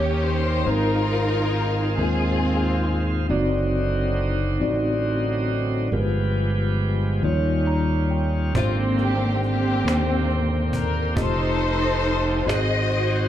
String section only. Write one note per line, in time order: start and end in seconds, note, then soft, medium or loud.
0.00 0.63 C#4 medium
0.00 0.64 G4 medium
0.00 0.24 C#5 medium
0.24 0.68 C5 medium
0.68 1.95 D#4 medium
0.68 1.95 F4 medium
0.68 2.00 A#4 medium
2.00 3.26 C4 soft
2.00 3.27 F4 medium
2.00 2.98 G#4 medium
8.56 9.44 A#3 medium
8.56 9.44 C4 medium
8.56 8.76 F4 medium
9.02 9.41 G4 medium
9.45 10.71 A#3 medium
9.45 10.71 C4 medium
9.45 10.27 G4 medium
10.75 11.14 A#4 medium
11.18 12.44 D#4 medium
11.18 12.44 A4 medium
11.18 12.45 C5 medium
12.48 13.28 F#4 medium
12.48 13.28 C5 medium
12.48 13.28 D#5 medium